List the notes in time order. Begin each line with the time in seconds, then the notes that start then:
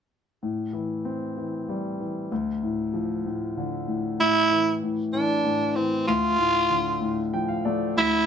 0.43 A2
0.73 E3
1.05 C4
1.37 E3
1.69 G3
2.00 E3
2.32 D2
2.63 A2
2.94 F3
3.26 A2
3.57 D3
3.88 A2
4.20 A2 E4
4.51 E3
4.83 A2
5.13 E3 D4
5.46 A2
5.76 E3 C4
6.08 D2 F4
6.38 A2
6.70 D3
7.01 A2
7.33 F3 G5
7.48 F5
7.65 A3 D5
7.97 D2 E4